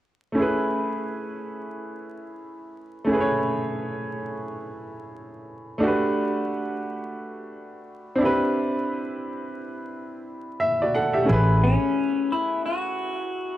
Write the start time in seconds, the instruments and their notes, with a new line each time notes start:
0.32 upright piano A3 C#4
0.37 upright piano E4 G#4
0.42 upright piano B4
3.05 upright piano A3 C#4
3.09 upright piano E4 G#4
3.14 upright piano B4
3.20 upright piano C#5
5.78 upright piano A3 D4
5.83 upright piano F#4 G4
5.87 upright piano B4
8.16 upright piano C4 D4
8.20 upright piano E4 G4
8.25 upright piano B4
10.60 upright piano E5
10.82 upright piano F#4 D5
10.94 upright piano A4 F#5
11.13 upright piano G4 E5
11.23 upright piano A3 C#4
11.28 upright bass A1, upright piano E4 G#4
11.33 upright piano B4
11.64 clean electric guitar C#4
12.32 clean electric guitar E4
12.66 clean electric guitar F#4